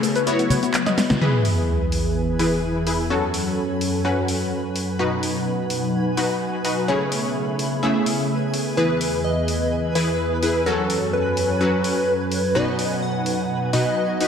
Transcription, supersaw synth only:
0.00 0.24 C#3 medium
0.00 0.24 A3 medium
0.00 0.24 C#4 medium
0.00 0.24 E4 medium
0.00 0.24 G#4 medium
0.00 0.24 C#5 loud
0.27 1.19 B3 medium
0.27 1.19 E4 medium
0.27 1.19 F#4 medium
0.27 1.19 C#5 medium
1.21 2.37 E3 medium
1.21 2.37 E4 medium
1.21 2.37 G#4 medium
1.21 2.37 B4 loud
2.39 2.84 E3 medium
2.39 2.84 E4 medium
2.39 2.84 G#4 medium
2.39 2.84 B4 medium
2.87 3.08 E4 medium
2.87 3.08 G#4 medium
2.87 3.08 B4 medium
3.10 4.02 F#3 loud
3.10 4.02 C#4 medium
3.10 4.02 F#4 medium
3.10 4.02 A4 loud
4.05 4.97 F#3 medium
4.05 4.97 C#4 medium
4.05 4.97 F#4 medium
4.05 4.97 B4 medium
4.99 6.15 B2 medium
4.99 6.15 D#4 medium
4.99 6.15 F#4 medium
4.99 6.15 B4 loud
6.17 6.62 B2 medium
6.17 6.62 D#4 medium
6.17 6.62 F#4 medium
6.17 6.62 B4 medium
6.65 6.86 D#4 medium
6.65 6.86 F#4 medium
6.65 6.86 B4 medium
6.88 7.80 C#3 medium
6.88 7.80 A3 medium
6.88 7.80 C#4 medium
6.88 7.80 E4 medium
6.88 7.80 G#4 medium
6.88 7.80 C#5 loud
7.83 8.75 C#3 medium
7.83 8.75 A3 medium
7.83 8.75 C#4 medium
7.83 8.75 E4 medium
7.83 8.75 G#4 medium
7.83 8.75 E5 medium
8.77 9.93 E3 medium
8.77 9.93 E4 medium
8.77 9.93 G#4 medium
8.77 9.93 B4 loud
9.95 10.40 E3 medium
9.95 10.40 E4 medium
9.95 10.40 G#4 medium
9.95 10.40 B4 medium
10.43 10.64 E4 medium
10.43 10.64 G#4 medium
10.43 10.64 B4 medium
10.66 11.58 F#3 medium
10.66 11.58 C#4 medium
10.66 11.58 F#4 medium
10.66 11.58 A4 loud
11.61 12.53 F#3 medium
11.61 12.53 C#4 medium
11.61 12.53 F#4 medium
11.61 12.53 B4 medium
12.55 13.71 B2 medium
12.55 13.71 D#4 medium
12.55 13.71 F#4 medium
12.55 13.71 B4 loud
13.73 14.18 B2 medium
13.73 14.18 D#4 medium
13.73 14.18 F#4 medium
13.73 14.18 B4 medium
14.21 14.28 D#4 medium
14.21 14.28 F#4 medium
14.21 14.28 B4 medium

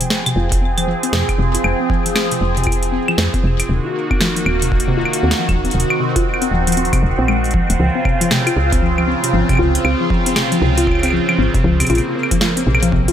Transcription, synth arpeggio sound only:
0.01 0.10 C3 medium
0.26 0.32 C3 loud
0.36 0.46 F4 loud
0.62 0.77 C4 medium
0.78 0.84 F3 medium
0.87 0.97 F3 medium
1.03 1.09 C4 medium
1.13 1.28 C3 medium
1.39 1.49 C3 loud
1.55 1.61 F4 loud
1.80 1.89 C4 medium
1.90 2.00 F3 medium
2.06 2.12 F3 medium
2.16 2.26 C4 medium
2.31 2.41 C3 medium
2.57 2.63 C3 loud
2.67 2.77 F4 loud
2.92 3.08 C4 medium
3.08 3.15 F3 medium
3.18 3.28 F3 medium
3.34 3.40 C4 medium
3.44 3.59 C3 medium
3.69 3.79 C3 loud
3.85 3.91 F4 medium
4.11 4.20 C4 medium
4.20 4.31 F3 medium
4.36 4.43 F3 medium
4.46 4.56 C4 medium
4.62 4.71 C3 medium
4.88 4.94 C3 loud
4.97 5.08 F4 loud
5.23 5.38 C4 medium
5.39 5.45 F3 medium
5.49 5.59 F3 medium
5.65 5.71 C4 medium
5.74 5.89 C3 medium
6.00 6.10 C3 loud
6.16 6.22 F4 loud
6.42 6.51 C4 medium
6.51 6.61 F3 medium
6.67 6.73 F3 medium
6.77 6.87 C4 medium
6.93 7.02 C3 medium
7.18 7.22 C4 medium
7.28 7.38 G#3 loud
7.54 7.64 F3 medium
7.70 7.76 A#3 medium
7.79 7.90 F3 medium
7.95 8.02 C4 medium
8.05 8.20 C3 medium
8.21 8.30 F3 loud
8.31 8.41 C3 loud
8.47 8.53 F4 medium
8.72 8.82 C4 medium
8.82 8.92 F3 medium
8.98 9.04 F3 medium
9.08 9.18 C4 medium
9.24 9.33 C3 medium
9.33 9.48 F3 loud
9.49 9.55 C3 loud
9.59 9.69 F4 loud
9.85 10.00 C4 medium
10.01 10.07 F3 medium
10.10 10.20 F3 medium
10.26 10.32 C4 medium
10.36 10.51 C3 medium
10.52 10.61 F3 loud
10.62 10.72 C3 loud
10.78 10.84 F4 loud
11.03 11.12 C4 medium
11.13 11.23 F3 medium
11.29 11.35 F3 medium
11.39 11.49 C4 medium
11.54 11.64 C3 medium
11.64 11.79 F3 loud
11.80 11.86 C3 loud
11.90 12.00 F4 loud
12.15 12.31 C4 medium
12.31 12.38 F3 medium
12.41 12.51 F3 medium
12.57 12.63 C4 medium
12.67 12.82 C3 medium
12.83 12.92 F3 loud
12.92 13.02 C3 loud
13.08 13.13 F4 loud

